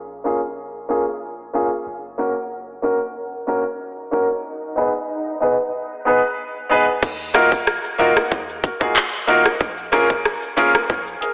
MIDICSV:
0, 0, Header, 1, 5, 480
1, 0, Start_track
1, 0, Key_signature, -6, "minor"
1, 0, Tempo, 645161
1, 1387, Time_signature, 4, 2, 24, 8
1, 8434, End_track
2, 0, Start_track
2, 0, Title_t, "Grand piano"
2, 0, Program_c, 0, 0
2, 179, Note_on_c, 0, 58, 79
2, 185, Note_on_c, 0, 61, 75
2, 189, Note_on_c, 0, 65, 72
2, 194, Note_on_c, 0, 68, 93
2, 285, Note_off_c, 0, 58, 0
2, 288, Note_off_c, 0, 61, 0
2, 290, Note_off_c, 0, 65, 0
2, 292, Note_off_c, 0, 68, 0
2, 659, Note_on_c, 0, 58, 83
2, 664, Note_on_c, 0, 61, 75
2, 670, Note_on_c, 0, 65, 73
2, 674, Note_on_c, 0, 68, 94
2, 765, Note_off_c, 0, 58, 0
2, 767, Note_off_c, 0, 61, 0
2, 770, Note_off_c, 0, 65, 0
2, 772, Note_off_c, 0, 68, 0
2, 1141, Note_on_c, 0, 58, 84
2, 1146, Note_on_c, 0, 61, 76
2, 1151, Note_on_c, 0, 65, 76
2, 1155, Note_on_c, 0, 68, 92
2, 1246, Note_off_c, 0, 58, 0
2, 1248, Note_off_c, 0, 61, 0
2, 1251, Note_off_c, 0, 65, 0
2, 1253, Note_off_c, 0, 68, 0
2, 1620, Note_on_c, 0, 58, 82
2, 1624, Note_on_c, 0, 61, 74
2, 1630, Note_on_c, 0, 66, 75
2, 1634, Note_on_c, 0, 70, 87
2, 1725, Note_off_c, 0, 58, 0
2, 1727, Note_off_c, 0, 61, 0
2, 1730, Note_off_c, 0, 66, 0
2, 1732, Note_off_c, 0, 70, 0
2, 2099, Note_on_c, 0, 58, 78
2, 2104, Note_on_c, 0, 61, 75
2, 2108, Note_on_c, 0, 66, 74
2, 2113, Note_on_c, 0, 70, 87
2, 2205, Note_off_c, 0, 58, 0
2, 2207, Note_off_c, 0, 61, 0
2, 2210, Note_off_c, 0, 66, 0
2, 2212, Note_off_c, 0, 70, 0
2, 2580, Note_on_c, 0, 58, 84
2, 2584, Note_on_c, 0, 61, 77
2, 2590, Note_on_c, 0, 66, 74
2, 2594, Note_on_c, 0, 70, 94
2, 2686, Note_off_c, 0, 58, 0
2, 2687, Note_off_c, 0, 61, 0
2, 2690, Note_off_c, 0, 66, 0
2, 2692, Note_off_c, 0, 70, 0
2, 3060, Note_on_c, 0, 58, 84
2, 3065, Note_on_c, 0, 61, 79
2, 3069, Note_on_c, 0, 66, 75
2, 3074, Note_on_c, 0, 70, 93
2, 3165, Note_off_c, 0, 58, 0
2, 3168, Note_off_c, 0, 61, 0
2, 3170, Note_off_c, 0, 66, 0
2, 3172, Note_off_c, 0, 70, 0
2, 3540, Note_on_c, 0, 59, 82
2, 3545, Note_on_c, 0, 63, 74
2, 3550, Note_on_c, 0, 68, 74
2, 3555, Note_on_c, 0, 71, 86
2, 3645, Note_off_c, 0, 59, 0
2, 3648, Note_off_c, 0, 63, 0
2, 3650, Note_off_c, 0, 68, 0
2, 3653, Note_off_c, 0, 71, 0
2, 4020, Note_on_c, 0, 59, 78
2, 4025, Note_on_c, 0, 63, 72
2, 4029, Note_on_c, 0, 68, 73
2, 4034, Note_on_c, 0, 71, 89
2, 4125, Note_off_c, 0, 59, 0
2, 4128, Note_off_c, 0, 63, 0
2, 4130, Note_off_c, 0, 68, 0
2, 4132, Note_off_c, 0, 71, 0
2, 4502, Note_on_c, 0, 59, 84
2, 4506, Note_on_c, 0, 63, 74
2, 4512, Note_on_c, 0, 68, 73
2, 4516, Note_on_c, 0, 71, 90
2, 4606, Note_off_c, 0, 59, 0
2, 4608, Note_off_c, 0, 63, 0
2, 4611, Note_off_c, 0, 68, 0
2, 4613, Note_off_c, 0, 71, 0
2, 4981, Note_on_c, 0, 59, 84
2, 4985, Note_on_c, 0, 63, 76
2, 4990, Note_on_c, 0, 68, 76
2, 4995, Note_on_c, 0, 71, 91
2, 5086, Note_off_c, 0, 59, 0
2, 5088, Note_off_c, 0, 63, 0
2, 5090, Note_off_c, 0, 68, 0
2, 5093, Note_off_c, 0, 71, 0
2, 5460, Note_on_c, 0, 58, 91
2, 5463, Note_on_c, 0, 63, 80
2, 5467, Note_on_c, 0, 65, 84
2, 5471, Note_on_c, 0, 66, 81
2, 5474, Note_on_c, 0, 70, 98
2, 5565, Note_off_c, 0, 58, 0
2, 5567, Note_off_c, 0, 63, 0
2, 5569, Note_off_c, 0, 65, 0
2, 5571, Note_off_c, 0, 66, 0
2, 5572, Note_off_c, 0, 70, 0
2, 5940, Note_on_c, 0, 58, 90
2, 5944, Note_on_c, 0, 63, 78
2, 5948, Note_on_c, 0, 65, 80
2, 5951, Note_on_c, 0, 66, 82
2, 5955, Note_on_c, 0, 70, 97
2, 6045, Note_off_c, 0, 58, 0
2, 6047, Note_off_c, 0, 63, 0
2, 6049, Note_off_c, 0, 65, 0
2, 6051, Note_off_c, 0, 66, 0
2, 6053, Note_off_c, 0, 70, 0
2, 6421, Note_on_c, 0, 66, 55
2, 6435, Note_on_c, 0, 70, 60
2, 6475, Note_off_c, 0, 66, 0
2, 6482, Note_off_c, 0, 70, 0
2, 6547, Note_on_c, 0, 58, 77
2, 6550, Note_on_c, 0, 63, 71
2, 6554, Note_on_c, 0, 65, 71
2, 6557, Note_on_c, 0, 66, 72
2, 6562, Note_on_c, 0, 68, 86
2, 6641, Note_off_c, 0, 58, 0
2, 6643, Note_off_c, 0, 63, 0
2, 6644, Note_off_c, 0, 65, 0
2, 6646, Note_off_c, 0, 66, 0
2, 6648, Note_off_c, 0, 68, 0
2, 6899, Note_on_c, 0, 58, 90
2, 6902, Note_on_c, 0, 63, 85
2, 6906, Note_on_c, 0, 65, 81
2, 6909, Note_on_c, 0, 66, 85
2, 6913, Note_on_c, 0, 70, 98
2, 7005, Note_off_c, 0, 58, 0
2, 7007, Note_off_c, 0, 63, 0
2, 7008, Note_off_c, 0, 65, 0
2, 7010, Note_off_c, 0, 66, 0
2, 7012, Note_off_c, 0, 70, 0
2, 7379, Note_on_c, 0, 58, 90
2, 7383, Note_on_c, 0, 61, 84
2, 7387, Note_on_c, 0, 65, 84
2, 7390, Note_on_c, 0, 68, 80
2, 7394, Note_on_c, 0, 70, 97
2, 7485, Note_off_c, 0, 58, 0
2, 7487, Note_off_c, 0, 61, 0
2, 7489, Note_off_c, 0, 65, 0
2, 7490, Note_off_c, 0, 68, 0
2, 7492, Note_off_c, 0, 70, 0
2, 7861, Note_on_c, 0, 58, 85
2, 7863, Note_on_c, 0, 61, 80
2, 7867, Note_on_c, 0, 65, 78
2, 7870, Note_on_c, 0, 68, 80
2, 7874, Note_on_c, 0, 70, 95
2, 7966, Note_off_c, 0, 58, 0
2, 7967, Note_off_c, 0, 61, 0
2, 7969, Note_off_c, 0, 65, 0
2, 7970, Note_off_c, 0, 68, 0
2, 7972, Note_off_c, 0, 70, 0
2, 8340, Note_on_c, 0, 68, 55
2, 8354, Note_on_c, 0, 70, 60
2, 8394, Note_off_c, 0, 68, 0
2, 8401, Note_off_c, 0, 70, 0
2, 8434, End_track
3, 0, Start_track
3, 0, Title_t, "808-style bass"
3, 0, Program_c, 1, 38
3, 0, Note_on_c, 1, 34, 83
3, 1358, Note_off_c, 1, 34, 0
3, 1387, Note_on_c, 1, 30, 83
3, 3277, Note_off_c, 1, 30, 0
3, 5227, Note_on_c, 1, 39, 109
3, 5595, Note_on_c, 1, 35, 92
3, 5606, Note_off_c, 1, 39, 0
3, 5787, Note_off_c, 1, 35, 0
3, 5946, Note_on_c, 1, 37, 98
3, 6048, Note_off_c, 1, 37, 0
3, 6187, Note_on_c, 1, 39, 102
3, 6481, Note_off_c, 1, 39, 0
3, 6554, Note_on_c, 1, 35, 97
3, 6644, Note_off_c, 1, 35, 0
3, 6907, Note_on_c, 1, 29, 96
3, 7099, Note_off_c, 1, 29, 0
3, 7147, Note_on_c, 1, 34, 117
3, 7441, Note_off_c, 1, 34, 0
3, 7515, Note_on_c, 1, 32, 88
3, 7707, Note_off_c, 1, 32, 0
3, 7866, Note_on_c, 1, 32, 95
3, 7968, Note_off_c, 1, 32, 0
3, 8108, Note_on_c, 1, 34, 115
3, 8300, Note_off_c, 1, 34, 0
3, 8434, End_track
4, 0, Start_track
4, 0, Title_t, "Swell"
4, 0, Program_c, 2, 103
4, 1387, Note_on_c, 2, 60, 80
4, 4267, Note_off_c, 2, 60, 0
4, 8434, End_track
5, 0, Start_track
5, 0, Title_t, "Drums"
5, 5227, Note_on_c, 9, 36, 112
5, 5227, Note_on_c, 9, 49, 112
5, 5227, Note_on_c, 9, 60, 83
5, 5227, Note_on_c, 9, 82, 68
5, 5301, Note_off_c, 9, 60, 0
5, 5302, Note_off_c, 9, 36, 0
5, 5302, Note_off_c, 9, 49, 0
5, 5302, Note_off_c, 9, 82, 0
5, 5356, Note_on_c, 9, 82, 52
5, 5430, Note_off_c, 9, 82, 0
5, 5465, Note_on_c, 9, 37, 99
5, 5468, Note_on_c, 9, 60, 77
5, 5469, Note_on_c, 9, 42, 81
5, 5469, Note_on_c, 9, 82, 58
5, 5539, Note_off_c, 9, 37, 0
5, 5543, Note_off_c, 9, 60, 0
5, 5544, Note_off_c, 9, 42, 0
5, 5544, Note_off_c, 9, 82, 0
5, 5593, Note_on_c, 9, 82, 75
5, 5595, Note_on_c, 9, 36, 88
5, 5667, Note_off_c, 9, 82, 0
5, 5669, Note_off_c, 9, 36, 0
5, 5706, Note_on_c, 9, 82, 72
5, 5708, Note_on_c, 9, 37, 90
5, 5780, Note_off_c, 9, 82, 0
5, 5783, Note_off_c, 9, 37, 0
5, 5835, Note_on_c, 9, 82, 62
5, 5909, Note_off_c, 9, 82, 0
5, 5945, Note_on_c, 9, 60, 51
5, 5948, Note_on_c, 9, 42, 70
5, 5948, Note_on_c, 9, 82, 53
5, 6020, Note_off_c, 9, 60, 0
5, 6023, Note_off_c, 9, 42, 0
5, 6023, Note_off_c, 9, 82, 0
5, 6072, Note_on_c, 9, 60, 69
5, 6074, Note_on_c, 9, 82, 79
5, 6076, Note_on_c, 9, 37, 98
5, 6147, Note_off_c, 9, 60, 0
5, 6149, Note_off_c, 9, 82, 0
5, 6151, Note_off_c, 9, 37, 0
5, 6185, Note_on_c, 9, 60, 79
5, 6187, Note_on_c, 9, 36, 99
5, 6190, Note_on_c, 9, 82, 78
5, 6259, Note_off_c, 9, 60, 0
5, 6262, Note_off_c, 9, 36, 0
5, 6264, Note_off_c, 9, 82, 0
5, 6316, Note_on_c, 9, 82, 59
5, 6391, Note_off_c, 9, 82, 0
5, 6426, Note_on_c, 9, 36, 102
5, 6427, Note_on_c, 9, 42, 75
5, 6427, Note_on_c, 9, 82, 55
5, 6500, Note_off_c, 9, 36, 0
5, 6501, Note_off_c, 9, 42, 0
5, 6501, Note_off_c, 9, 82, 0
5, 6553, Note_on_c, 9, 82, 71
5, 6554, Note_on_c, 9, 36, 92
5, 6628, Note_off_c, 9, 36, 0
5, 6628, Note_off_c, 9, 82, 0
5, 6667, Note_on_c, 9, 39, 92
5, 6670, Note_on_c, 9, 82, 74
5, 6741, Note_off_c, 9, 39, 0
5, 6744, Note_off_c, 9, 82, 0
5, 6797, Note_on_c, 9, 82, 58
5, 6872, Note_off_c, 9, 82, 0
5, 6906, Note_on_c, 9, 61, 65
5, 6908, Note_on_c, 9, 42, 75
5, 6908, Note_on_c, 9, 82, 57
5, 6981, Note_off_c, 9, 61, 0
5, 6983, Note_off_c, 9, 42, 0
5, 6983, Note_off_c, 9, 82, 0
5, 7033, Note_on_c, 9, 60, 67
5, 7035, Note_on_c, 9, 37, 100
5, 7036, Note_on_c, 9, 82, 82
5, 7107, Note_off_c, 9, 60, 0
5, 7109, Note_off_c, 9, 37, 0
5, 7110, Note_off_c, 9, 82, 0
5, 7146, Note_on_c, 9, 60, 85
5, 7147, Note_on_c, 9, 36, 118
5, 7147, Note_on_c, 9, 82, 69
5, 7221, Note_off_c, 9, 60, 0
5, 7221, Note_off_c, 9, 82, 0
5, 7222, Note_off_c, 9, 36, 0
5, 7276, Note_on_c, 9, 82, 54
5, 7351, Note_off_c, 9, 82, 0
5, 7386, Note_on_c, 9, 37, 101
5, 7388, Note_on_c, 9, 60, 78
5, 7390, Note_on_c, 9, 42, 76
5, 7390, Note_on_c, 9, 82, 55
5, 7460, Note_off_c, 9, 37, 0
5, 7462, Note_off_c, 9, 60, 0
5, 7465, Note_off_c, 9, 42, 0
5, 7465, Note_off_c, 9, 82, 0
5, 7514, Note_on_c, 9, 82, 74
5, 7515, Note_on_c, 9, 36, 95
5, 7589, Note_off_c, 9, 36, 0
5, 7589, Note_off_c, 9, 82, 0
5, 7627, Note_on_c, 9, 82, 72
5, 7629, Note_on_c, 9, 37, 94
5, 7701, Note_off_c, 9, 82, 0
5, 7703, Note_off_c, 9, 37, 0
5, 7755, Note_on_c, 9, 82, 58
5, 7830, Note_off_c, 9, 82, 0
5, 7866, Note_on_c, 9, 60, 50
5, 7868, Note_on_c, 9, 42, 72
5, 7868, Note_on_c, 9, 82, 54
5, 7941, Note_off_c, 9, 60, 0
5, 7943, Note_off_c, 9, 42, 0
5, 7943, Note_off_c, 9, 82, 0
5, 7992, Note_on_c, 9, 60, 70
5, 7995, Note_on_c, 9, 82, 80
5, 7997, Note_on_c, 9, 37, 97
5, 8067, Note_off_c, 9, 60, 0
5, 8069, Note_off_c, 9, 82, 0
5, 8071, Note_off_c, 9, 37, 0
5, 8106, Note_on_c, 9, 60, 75
5, 8108, Note_on_c, 9, 36, 91
5, 8110, Note_on_c, 9, 82, 78
5, 8181, Note_off_c, 9, 60, 0
5, 8182, Note_off_c, 9, 36, 0
5, 8185, Note_off_c, 9, 82, 0
5, 8237, Note_on_c, 9, 82, 60
5, 8311, Note_off_c, 9, 82, 0
5, 8349, Note_on_c, 9, 42, 78
5, 8349, Note_on_c, 9, 82, 55
5, 8423, Note_off_c, 9, 42, 0
5, 8423, Note_off_c, 9, 82, 0
5, 8434, End_track
0, 0, End_of_file